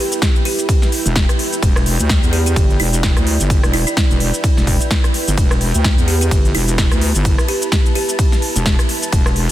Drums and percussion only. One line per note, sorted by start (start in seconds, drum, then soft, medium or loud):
0.12 closed hi-hat medium
0.12 shaker medium
0.22 kick loud
0.22 snare loud
0.22 closed hi-hat medium
0.22 ride medium
0.22 shaker medium
0.36 shaker soft
0.45 open hi-hat loud
0.59 closed hi-hat medium
0.59 shaker medium
0.69 kick loud
0.69 closed hi-hat medium
0.69 ride medium
0.69 shaker medium
0.82 snare soft
0.82 shaker soft
0.92 open hi-hat loud
1.06 closed hi-hat medium
1.06 shaker medium
1.16 kick loud
1.16 snare loud
1.16 closed hi-hat medium
1.16 ride medium
1.16 shaker medium
1.29 cross-stick medium
1.29 closed hi-hat soft
1.29 shaker soft
1.39 open hi-hat loud
1.53 closed hi-hat medium
1.53 shaker medium
1.63 kick loud
1.63 closed hi-hat medium
1.63 ride medium
1.63 shaker medium
1.76 cross-stick medium
1.76 shaker soft
1.86 open hi-hat loud
1.99 closed hi-hat medium
1.99 shaker medium
2.09 kick loud
2.09 snare loud
2.09 closed hi-hat medium
2.09 ride medium
2.09 shaker medium
2.23 shaker soft
2.33 open hi-hat loud
2.46 closed hi-hat soft
2.46 shaker medium
2.56 kick loud
2.56 closed hi-hat medium
2.56 ride medium
2.56 shaker medium
2.70 shaker soft
2.80 open hi-hat loud
2.93 closed hi-hat medium
2.93 shaker medium
3.03 kick loud
3.03 snare loud
3.03 closed hi-hat medium
3.03 ride medium
3.03 shaker medium
3.17 cross-stick medium
3.17 closed hi-hat soft
3.17 shaker soft
3.27 open hi-hat loud
3.40 closed hi-hat medium
3.40 shaker medium
3.50 kick loud
3.50 closed hi-hat medium
3.50 ride medium
3.50 shaker medium
3.63 cross-stick medium
3.63 shaker soft
3.74 open hi-hat loud
3.87 closed hi-hat medium
3.87 shaker medium
3.97 kick loud
3.97 snare loud
3.97 closed hi-hat medium
3.97 ride medium
3.97 shaker medium
4.11 shaker soft
4.20 open hi-hat loud
4.34 closed hi-hat medium
4.34 shaker medium
4.44 kick loud
4.44 closed hi-hat medium
4.44 ride medium
4.44 shaker medium
4.57 snare soft
4.57 shaker soft
4.67 kick medium
4.67 open hi-hat loud
4.81 closed hi-hat medium
4.81 shaker medium
4.91 kick loud
4.91 snare loud
4.91 closed hi-hat medium
4.91 ride medium
4.91 shaker medium
5.04 cross-stick medium
5.04 closed hi-hat soft
5.04 shaker soft
5.14 open hi-hat loud
5.28 closed hi-hat medium
5.28 shaker medium
5.38 kick loud
5.38 closed hi-hat medium
5.38 ride medium
5.38 shaker medium
5.51 cross-stick medium
5.51 shaker soft
5.61 open hi-hat loud
5.74 closed hi-hat medium
5.74 shaker medium
5.84 kick loud
5.84 snare loud
5.84 closed hi-hat medium
5.84 ride medium
5.84 shaker medium
5.98 shaker soft
6.08 open hi-hat loud
6.21 closed hi-hat soft
6.21 shaker medium
6.31 kick loud
6.31 closed hi-hat medium
6.31 ride medium
6.31 shaker medium
6.45 shaker soft
6.55 open hi-hat loud
6.68 closed hi-hat medium
6.68 shaker medium
6.78 kick loud
6.78 snare loud
6.78 closed hi-hat medium
6.78 ride medium
6.78 shaker medium
6.91 cross-stick medium
6.91 closed hi-hat soft
6.91 shaker soft
7.01 open hi-hat loud
7.15 closed hi-hat soft
7.15 shaker medium
7.25 kick loud
7.25 closed hi-hat medium
7.25 ride medium
7.25 shaker medium
7.38 cross-stick medium
7.38 shaker soft
7.48 open hi-hat loud
7.62 closed hi-hat medium
7.62 shaker medium
7.72 kick loud
7.72 snare loud
7.72 closed hi-hat medium
7.72 ride medium
7.72 shaker medium
7.86 shaker soft
7.95 open hi-hat loud
8.09 closed hi-hat medium
8.09 shaker medium
8.19 kick loud
8.19 closed hi-hat medium
8.19 ride medium
8.19 shaker medium
8.32 snare soft
8.32 shaker soft
8.42 open hi-hat loud
8.56 closed hi-hat medium
8.56 shaker medium
8.66 kick loud
8.66 snare loud
8.66 closed hi-hat medium
8.66 ride medium
8.66 shaker medium
8.79 cross-stick medium
8.79 closed hi-hat soft
8.79 shaker soft
8.89 open hi-hat loud
9.02 closed hi-hat medium
9.02 shaker medium
9.12 kick loud
9.12 closed hi-hat medium
9.12 ride medium
9.12 shaker medium
9.26 cross-stick medium
9.26 shaker soft
9.36 open hi-hat loud